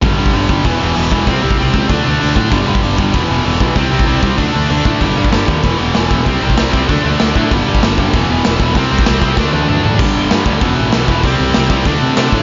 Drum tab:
CC |----------------|----------------|----------------|----------------|
HH |o---o---o---o---|o---o---o---o---|o---o---o---o---|o---o---o---o---|
SD |----------------|----------------|----------------|----------------|
T1 |----------------|----------------|----------------|----------------|
T2 |----------------|----------------|----------------|----------------|
FT |----------------|----------------|----------------|----------------|
BD |o--o--o-o-----o-|o--o--o-o-----o-|o--o--o-o-----o-|o--o--o-o-----o-|

CC |----------------|----------------|----------------|----------------|
HH |o---o---o---o---|o---o---o---o---|o---o---o---o---|o---o-----------|
SD |----o-------o---|----o-------o---|----o-------o---|----o---o-------|
T1 |----------------|----------------|----------------|----------o-----|
T2 |----------------|----------------|----------------|------------o---|
FT |----------------|----------------|----------------|--------------o-|
BD |o--o--o-o-----o-|o--o--o-o-----o-|o--o--o-o-----o-|o--o--o-o-------|

CC |x---------------|----------------|
HH |----o---o---o---|o---o---o---o---|
SD |----o-------o---|----o-------o---|
T1 |----------------|----------------|
T2 |----------------|----------------|
FT |----------------|----------------|
BD |o-----o-o-----o-|o-----o-o-----o-|